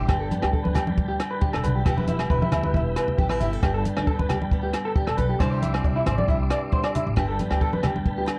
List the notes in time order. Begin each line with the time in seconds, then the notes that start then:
Already playing: G3 G4
0.08 G1 G2 D4 G4 G5 A5 B5, kick, cross-stick, low agogo
0.20 A4
0.31 B3, closed hi-hat, high conga
0.42 D2 G4, cross-stick, low agogo
0.53 D4 A4, kick
0.64 D2 B4, high conga
0.74 G3 G4, cross-stick, closed hi-hat, low conga, low agogo
0.87 high conga
0.97 D2, muted steel-string acoustic guitar stroke, kick
1.08 G4
1.19 D3, cross-stick, closed hi-hat, low agogo
1.31 B4
1.41 C3 G4, kick
1.53 E1 A4, cross-stick, low agogo
1.64 B1 D3 B4, closed hi-hat, low conga
1.75 G4
1.85 E1 E3 G3 B3 E4 G4 E5, kick, cross-stick, low agogo
1.89 G4
1.98 B4, high conga
2.07 B3 E4, closed hi-hat, high conga
2.19 cross-stick, low agogo
2.30 E1 E4 B4, kick
2.42 E4, high conga
2.52 D2 G3 E4, cross-stick, closed hi-hat, low conga, low agogo
2.63 B4, high conga
2.74 E1 B3 E4, kick
2.96 B2 B4, cross-stick, closed hi-hat, low agogo
3.08 low conga
3.18 A1 D4 G4, kick, high conga
3.30 E4 B4, cross-stick, low agogo
3.40 G1 E4 G4, closed hi-hat, low conga
3.53 A4
3.63 G1 G2 D4 G4 A5, kick, cross-stick, low agogo
3.74 A4
3.85 B3, closed hi-hat, high conga
3.97 D2 D4, cross-stick, low agogo
4.07 D4 A4, kick
4.19 D2 B4, high conga
4.29 G3 G4, cross-stick, closed hi-hat, low conga, low agogo
4.42 high conga
4.51 D2 B3, kick
4.63 G4
4.73 D3, cross-stick, closed hi-hat, low agogo
4.85 A4
4.96 D4 G4, kick
5.07 E1 A4, cross-stick, low agogo
5.17 B1 A4 B4, closed hi-hat, low conga
5.29 G4
5.39 C2 C3 G3 D4 E4 C5 E5 C6 D6, kick, cross-stick, low agogo
5.43 G4
5.52 C5
5.62 D4 E4, closed hi-hat, high conga
5.74 cross-stick, low agogo
5.84 C2 E4, muted clean electric guitar stroke, kick
5.96 E4
6.06 A1 G3 C5, cross-stick, closed hi-hat, low conga, low agogo
6.18 D5, high conga
6.28 C2 D4 E4, kick
6.50 G2 D5, cross-stick, closed hi-hat, low agogo
6.72 B2 C5, kick
6.83 D5, cross-stick, low agogo
6.95 A2 E4, closed hi-hat, low conga
7.07 A1
7.16 G1 G2 D4 G4 G5 A5 B5, kick, cross-stick, low agogo
7.28 A4
7.39 B3, closed hi-hat, high conga
7.51 D2 G4, cross-stick, low agogo
7.61 D4 A4, kick
7.73 D2 B4, high conga
7.83 G3 G4, cross-stick, closed hi-hat, low conga, low agogo
7.96 high conga
8.06 D2 B3, kick
8.18 G4
8.26 D3, cross-stick, closed hi-hat, low agogo